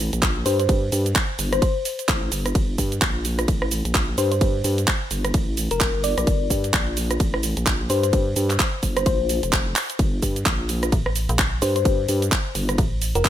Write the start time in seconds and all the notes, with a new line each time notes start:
Already playing: A1
0.13 A#1, closed hi-hat, shaker
0.22 kick, clap, closed hi-hat, ride, shaker
0.46 G2 C5, open hi-hat, shaker
0.59 C5, closed hi-hat, shaker
0.69 kick, closed hi-hat, ride, shaker
0.92 G2, open hi-hat, shaker
1.06 closed hi-hat, shaker
1.15 kick, clap, closed hi-hat, ride, shaker
1.39 G1, open hi-hat, shaker
1.53 C5, cross-stick, closed hi-hat, shaker
1.62 C5, kick, closed hi-hat, ride, shaker
1.85 open hi-hat, shaker
1.99 closed hi-hat, shaker
2.09 A1, kick, clap, closed hi-hat, ride, shaker
2.32 G1, open hi-hat, shaker
2.46 cross-stick, closed hi-hat, shaker
2.55 G1, kick, closed hi-hat, ride, shaker
2.78 G2, kick, open hi-hat, shaker
2.92 closed hi-hat, shaker
3.02 A#1, kick, clap, closed hi-hat, ride, shaker
3.25 open hi-hat, shaker
3.39 cross-stick, closed hi-hat, shaker
3.48 A1, kick, closed hi-hat, ride, shaker
3.62 cross-stick
3.71 open hi-hat, shaker
3.85 A#1, closed hi-hat, shaker
3.95 kick, clap, closed hi-hat, ride, shaker
4.18 G2 C5, open hi-hat, shaker
4.32 C5, closed hi-hat, shaker
4.41 kick, closed hi-hat, ride, shaker
4.64 G2, open hi-hat, shaker
4.78 closed hi-hat, shaker
4.88 kick, clap, closed hi-hat, ride, shaker
5.11 G1, open hi-hat, shaker
5.25 cross-stick, closed hi-hat, shaker
5.34 A1, kick, closed hi-hat, ride, shaker
5.57 open hi-hat, shaker
5.71 F1 A#4, closed hi-hat, shaker
5.81 kick, clap, closed hi-hat, ride, shaker
5.94 G1
6.04 D5, open hi-hat, shaker
6.18 A#1 D5, cross-stick, closed hi-hat, shaker
6.27 G1, kick, closed hi-hat, ride, shaker
6.50 G2, kick, open hi-hat, shaker
6.64 closed hi-hat, shaker
6.74 A#1, kick, clap, closed hi-hat, ride, shaker
6.97 open hi-hat, shaker
7.11 cross-stick, closed hi-hat, shaker
7.20 A1, kick, closed hi-hat, ride, shaker
7.34 cross-stick
7.43 open hi-hat, shaker
7.57 A#1, closed hi-hat, shaker
7.66 kick, clap, closed hi-hat, ride, shaker
7.90 G2 C5, open hi-hat, shaker
8.03 C5, closed hi-hat, shaker
8.13 kick, closed hi-hat, ride, shaker
8.36 G2, open hi-hat, shaker
8.50 clap, closed hi-hat, shaker
8.60 kick, clap, closed hi-hat, ride, shaker
8.83 G1, kick, open hi-hat, shaker
8.97 C5, cross-stick, closed hi-hat, shaker
9.06 A#1 C5, kick, closed hi-hat, ride, shaker
9.29 open hi-hat, shaker
9.43 F1, closed hi-hat, shaker
9.53 kick, clap, closed hi-hat, ride, shaker
9.76 clap, open hi-hat, shaker
9.90 closed hi-hat, shaker
9.99 G1, kick, closed hi-hat, ride, shaker
10.22 G2, kick, open hi-hat, shaker
10.36 closed hi-hat, shaker
10.46 A#1, kick, clap, closed hi-hat, ride, shaker
10.69 open hi-hat, shaker
10.83 cross-stick, closed hi-hat, shaker
10.92 A1, kick, closed hi-hat, ride, shaker
11.06 cross-stick
11.16 open hi-hat, shaker
11.29 A#1, closed hi-hat, shaker
11.39 kick, clap, closed hi-hat, ride, shaker
11.62 G2 C5, open hi-hat, shaker
11.76 C5, closed hi-hat, shaker
11.85 kick, closed hi-hat, ride, shaker
12.09 G2, open hi-hat, shaker
12.22 closed hi-hat, shaker
12.32 kick, clap, closed hi-hat, ride, shaker
12.55 G1, open hi-hat, shaker
12.69 cross-stick, closed hi-hat, shaker
12.78 A1, kick, closed hi-hat, ride, shaker
13.02 open hi-hat, shaker
13.15 F1 A#4, closed hi-hat, shaker
13.25 kick, clap, closed hi-hat, ride, shaker